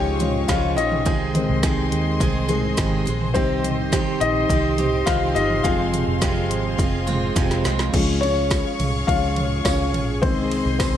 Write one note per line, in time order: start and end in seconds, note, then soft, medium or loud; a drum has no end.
0.00 0.45 C#2 medium
0.00 0.20 F3 soft
0.00 0.20 F3 medium
0.00 0.20 G#3 medium
0.00 0.20 G#3 soft
0.00 1.04 G#3 medium
0.00 0.19 C#4 medium
0.00 0.21 C#4 medium
0.00 0.78 D#4 medium
0.00 0.18 F4 medium
0.00 0.45 G4 medium
0.00 1.08 C5 medium
0.00 1.04 C#5 medium
0.00 1.08 C#5 medium
0.00 0.77 D#5 medium
0.00 1.04 F5 medium
0.00 0.50 G5 medium
0.00 1.04 C#6 medium
0.19 0.46 F3 soft
0.19 0.46 G#3 soft
0.19 0.48 G#3 soft
0.19 0.48 C#4 medium
0.19 0.46 C#4 soft
0.19 0.48 F4 medium
0.19 closed hi-hat medium
0.19 floor tom medium
0.48 0.78 C#2 medium
0.48 0.77 C#3 medium
0.48 0.78 F3 medium
0.48 0.77 G#3 medium
0.48 0.76 C#4 medium
0.48 0.76 F4 medium
0.48 0.75 F4 medium
0.48 0.78 F5 medium
0.48 kick loud
0.48 snare medium
0.48 closed hi-hat medium
0.77 1.06 A#1 medium
0.77 1.05 G#3 soft
0.77 1.06 C#4 soft
0.77 1.89 D#4 medium
0.77 1.06 F4 medium
0.77 1.88 D#5 medium
0.77 closed hi-hat medium
0.92 floor tom medium
1.05 1.46 C2 medium
1.05 1.62 C3 medium
1.05 1.63 D#3 medium
1.05 1.62 G#3 medium
1.05 1.63 C4 medium
1.05 3.33 G#4 medium
1.05 1.63 G#4 medium
1.05 7.89 C5 medium
1.05 5.60 D#5 medium
1.05 3.33 C6 medium
1.05 kick loud
1.05 closed hi-hat medium
1.34 1.73 D#3 medium
1.34 1.73 G#3 soft
1.34 1.73 C4 medium
1.34 closed hi-hat medium
1.34 floor tom medium
1.50 1.90 C2 medium
1.63 2.21 C3 medium
1.63 2.20 D#3 medium
1.63 2.20 G#3 medium
1.63 2.21 C4 medium
1.63 2.21 G#4 medium
1.63 kick loud
1.63 snare medium
1.63 closed hi-hat medium
1.92 2.19 D#2 medium
1.92 closed hi-hat medium
2.20 2.74 C2 medium
2.20 2.49 D#3 medium
2.20 2.49 G#3 medium
2.20 2.48 C4 medium
2.20 2.47 G#4 medium
2.20 kick loud
2.20 closed hi-hat medium
2.48 2.75 D#3 soft
2.48 2.75 G#3 soft
2.48 2.76 G#3 soft
2.48 2.77 C4 medium
2.48 2.75 C4 soft
2.48 2.77 G#4 medium
2.48 closed hi-hat medium
2.48 floor tom medium
2.77 3.05 G#1 medium
2.77 3.06 C3 medium
2.77 3.07 D#3 medium
2.77 3.07 G#3 medium
2.77 3.05 C4 medium
2.77 3.04 G#4 medium
2.77 kick loud
2.77 snare loud
2.77 closed hi-hat medium
3.06 3.35 A#1 medium
3.06 3.35 G#3 soft
3.06 3.34 C4 soft
3.06 3.35 G#4 medium
3.06 closed hi-hat medium
3.21 floor tom medium
3.34 4.03 C2 medium
3.34 3.91 C3 medium
3.34 5.60 D#3 medium
3.34 3.91 D#3 medium
3.34 5.60 G3 soft
3.34 3.92 C4 medium
3.34 3.89 C4 medium
3.34 3.92 D#4 medium
3.34 5.62 G4 medium
3.34 3.92 G4 medium
3.34 3.88 C5 loud
3.34 7.89 C6 medium
3.34 kick loud
3.34 closed hi-hat medium
3.34 swell medium
3.64 closed hi-hat medium
3.64 floor tom medium
3.92 4.50 C3 medium
3.92 4.48 D#3 medium
3.92 4.50 C4 medium
3.92 4.50 D#4 medium
3.92 4.50 G4 medium
3.92 kick loud
3.92 snare loud
3.92 closed hi-hat medium
4.20 4.48 A#1 medium
4.20 5.04 D#4 medium
4.20 5.09 D#5 loud
4.20 closed hi-hat medium
4.49 5.03 C2 loud
4.49 4.78 D#3 medium
4.49 4.79 C4 medium
4.49 4.78 D#4 medium
4.49 4.77 G4 medium
4.49 kick loud
4.49 closed hi-hat loud
4.78 5.06 C4 soft
4.78 5.06 D#4 medium
4.78 5.07 G4 medium
4.78 closed hi-hat medium
4.78 floor tom medium
5.06 5.34 C2 medium
5.06 5.36 C3 medium
5.06 5.36 D#3 loud
5.06 5.36 C4 loud
5.06 5.35 D#4 medium
5.06 5.34 F4 medium
5.06 5.34 G4 loud
5.06 5.36 F5 loud
5.06 kick loud
5.06 snare loud
5.06 closed hi-hat medium
5.34 5.62 G1 medium
5.34 5.64 C4 soft
5.34 5.65 D#4 soft
5.34 5.43 D#4 medium
5.34 5.64 G4 medium
5.34 5.41 D#5 medium
5.34 closed hi-hat medium
5.50 floor tom medium
5.63 6.05 F1 medium
5.63 6.20 F2 medium
5.63 6.20 C3 medium
5.63 6.02 F3 medium
5.63 6.21 F3 medium
5.63 6.03 G#3 soft
5.63 6.22 G#3 loud
5.63 6.21 C4 medium
5.63 6.03 C4 medium
5.63 6.22 F4 medium
5.63 7.33 F4 medium
5.63 7.91 G#4 medium
5.63 7.32 F5 loud
5.63 7.91 F5 medium
5.63 kick loud
5.63 closed hi-hat medium
5.93 closed hi-hat medium
5.93 floor tom medium
6.07 6.50 F1 medium
6.21 6.79 F2 medium
6.21 6.79 C3 medium
6.21 6.78 F3 loud
6.21 6.79 G#3 loud
6.21 6.79 C4 loud
6.21 6.80 F4 medium
6.21 kick loud
6.21 snare loud
6.21 closed hi-hat loud
6.50 6.77 G#1 medium
6.50 closed hi-hat medium
6.78 7.32 F1 loud
6.78 7.07 F3 medium
6.78 7.07 G#3 medium
6.78 7.06 C4 medium
6.78 7.06 F4 medium
6.78 kick loud
6.78 closed hi-hat loud
7.07 7.35 F3 soft
7.07 7.35 G#3 soft
7.07 7.36 C4 medium
7.07 7.36 F4 medium
7.07 closed hi-hat medium
7.07 floor tom medium
7.36 7.63 F1 medium
7.36 7.65 F2 medium
7.36 7.65 C3 medium
7.36 7.65 F3 loud
7.36 7.64 G#3 loud
7.36 7.64 C4 loud
7.36 7.63 F4 medium
7.36 kick loud
7.36 snare medium
7.36 closed hi-hat medium
7.51 snare medium
7.51 closed hi-hat soft
7.64 7.92 C2 medium
7.64 7.94 F3 soft
7.64 7.94 G#3 soft
7.64 7.94 C4 medium
7.64 7.93 F4 medium
7.64 snare medium
7.64 closed hi-hat medium
7.79 snare medium
7.93 8.62 C#2 medium
7.93 8.31 F3 soft
7.93 8.32 G#3 soft
7.93 8.22 C#4 medium
7.93 10.97 G#4 medium
7.93 10.20 C#5 medium
7.93 10.20 F5 medium
7.93 10.20 C#6 medium
7.93 kick loud
7.93 crash medium
7.93 ride medium
8.21 9.05 C#4 medium
8.21 9.10 C#5 loud
8.21 ride medium
8.50 kick loud
8.50 snare loud
8.50 ride medium
8.50 tambourine medium
8.79 9.06 C2 medium
8.79 floor tom medium
8.79 ride medium
9.07 9.61 C#2 loud
9.07 9.34 F3 soft
9.07 9.34 G#3 soft
9.07 9.34 C#4 medium
9.07 9.62 F4 medium
9.07 9.67 F5 loud
9.07 kick loud
9.07 ride medium
9.36 floor tom medium
9.36 ride medium
9.65 9.94 C#2 medium
9.65 10.19 C#4 medium
9.65 10.24 C#5 loud
9.65 kick loud
9.65 snare loud
9.65 ride medium
9.65 tambourine medium
9.94 10.23 A#1 medium
9.94 floor tom medium
9.94 ride medium
10.22 10.63 C2 medium
10.22 10.97 D#3 medium
10.22 10.97 G#3 medium
10.22 10.77 C4 medium
10.22 10.77 C5 medium
10.22 10.97 C5 medium
10.22 10.97 D#5 medium
10.22 10.97 C6 medium
10.22 kick loud
10.22 ride medium
10.51 ride medium
10.66 10.97 C2 loud
10.79 10.97 C4 medium
10.79 10.97 C5 medium
10.79 kick loud
10.79 snare loud
10.79 ride medium
10.79 tambourine medium